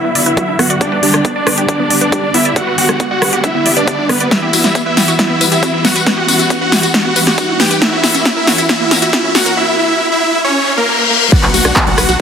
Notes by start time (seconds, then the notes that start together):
Already playing: E4 E5, riser
0.04 B3
0.15 D3 F#3 B3 F#4 D5, open hi-hat
0.26 E4 B4 E5, closed hi-hat
0.37 D3 F#3 B3 F#4, kick, closed hi-hat
0.48 D4
0.59 D3 F#3 B3 F#4 F#5, cross-stick, open hi-hat
0.70 D5, closed hi-hat
0.81 D3 G3 B3 D4 G4 D5, kick, closed hi-hat
0.92 B4
1.03 D3 G3 B3 D4 G4 D5, open hi-hat
1.14 D4, cross-stick, closed hi-hat
1.25 B3, kick, closed hi-hat
1.36 D4 D5
1.47 D3 G3 B3 G4 B4, cross-stick, open hi-hat
1.58 G4, closed hi-hat
1.68 D3 G3 B3 D4 G4 D5, kick, closed hi-hat
1.79 B3
1.90 D3 G3 B3 G4 D5, open hi-hat
2.01 D4 B4 D5, closed hi-hat
2.12 D3 G3 B3 G4, kick, closed hi-hat
2.23 D4
2.34 D3 G3 B3 E4 G4 E5, open hi-hat
2.45 D5, closed hi-hat
2.56 D3 G3 B3 F#4 G4 D5 F#5, kick, closed hi-hat
2.67 B4
2.78 D3 G3 B3 F#4 G4 F#5, open hi-hat
2.89 D4, cross-stick, closed hi-hat
3.00 B3, kick, closed hi-hat
3.11 F#4 D5 F#5
3.22 D3 G3 B3 G4 B4, kick, cross-stick, open hi-hat
3.33 G4, closed hi-hat
3.44 D3 G3 B3 D4 E4 G4 E5, kick, closed hi-hat
3.55 B3
3.65 D3 G3 B3 G4 D5, open hi-hat
3.76 D4 B4 D5, closed hi-hat
3.87 D3 G3 B3 G4, kick, closed hi-hat
3.99 D4
4.09 D3 G3 B3 G4 B4, cross-stick, open hi-hat
4.20 D5, closed hi-hat
4.31 E3 G3 B3 E4 F#4 B4 E5, kick, snare, closed hi-hat, tambourine
4.42 G4
4.53 E3 G3 B3 E4 F#4 E5, open hi-hat, tambourine
4.64 E4, snare, closed hi-hat, tambourine
4.75 B3, kick, closed hi-hat, tambourine
4.86 E4 B4 E5
4.97 E3 G3 B3 F#4 G4, snare, open hi-hat, tambourine
5.08 F#4, closed hi-hat, tambourine
5.19 E3 G3 B3 E4 F#4 E5, kick, snare, closed hi-hat
5.30 B3
5.41 E3 G3 B3 F#4 B4, open hi-hat, tambourine
5.52 E4 G4 E5, closed hi-hat, tambourine
5.63 E3 G3 B3 F#4, kick, closed hi-hat, tambourine
5.74 E4
5.84 E3 G3 B3 F#4 F#5, snare, open hi-hat, tambourine
5.96 B4, closed hi-hat, tambourine
6.06 E3 G3 B3 E4 F#4 B4 F#5, kick, snare, closed hi-hat, tambourine
6.17 G4
6.28 E3 G3 B3 E4 F#4 F#5, open hi-hat, tambourine
6.39 E4, closed hi-hat, tambourine
6.50 B3, kick, closed hi-hat, tambourine
6.61 F#4 B4 F#5
6.72 E3 G3 B3 E4 G4, kick, snare, open hi-hat, tambourine
6.83 F#4, closed hi-hat, tambourine
6.94 E3 G3 B3 E4 F#4 F#5, kick, snare, closed hi-hat
7.05 B3
7.16 E3 G3 B3 E4 B4, open hi-hat, tambourine
7.27 F#4 G4 F#5, snare, closed hi-hat, tambourine
7.38 E3 G3 B3 E4 F#4, kick, closed hi-hat, tambourine
7.49 E4
7.60 E3 G3 B3 E4 G4 G5, snare, open hi-hat, tambourine
7.71 B4, closed hi-hat, tambourine
7.82 E3 A#3 C#4 E4 F#4 A#4 E5, kick, snare, closed hi-hat, tambourine
7.92 F#4
8.04 E3 A#3 C#4 E4 F#4 E5, snare, open hi-hat, tambourine
8.15 C#4, closed hi-hat, tambourine
8.25 A#3, kick, snare, closed hi-hat
8.36 E4 A#4 E5
8.47 E3 A#3 C#4 F#4, snare, open hi-hat, tambourine
8.58 E4, closed hi-hat, tambourine
8.69 E3 A#3 C#4 E4 F#4 E5, kick, snare, closed hi-hat, tambourine
8.80 A#3
8.91 E3 A#3 C#4 F#4 A#4, snare, open hi-hat, tambourine
9.02 E4 F#4 E5, closed hi-hat, tambourine
9.13 E3 A#3 C#4 E4 F#4, kick, snare, closed hi-hat, tambourine
9.24 C#4
9.35 E3 A#3 C#4 F#4 F#5, snare, open hi-hat, tambourine
9.46 A#4, closed hi-hat, tambourine
9.57 E4 E5
9.79 E4 E5
10.12 E4 E5
10.44 C#4 C#5, reverse cymbal
10.77 A#3 A#4
11.10 A#3 A#4
11.32 F#4 D5 F#5, kick, closed hi-hat, crash, tambourine, downlifter
11.43 B1 B4, clap, closed hi-hat
11.54 B1 F#4 F#5, open hi-hat, tambourine
11.65 B1 D4, cross-stick, closed hi-hat, tambourine
11.76 B3, kick, clap, closed hi-hat
11.87 B1 F#4 D5 F#5, closed hi-hat
11.98 B1 B4, cross-stick, open hi-hat, tambourine
12.09 B1 F#4, closed hi-hat, tambourine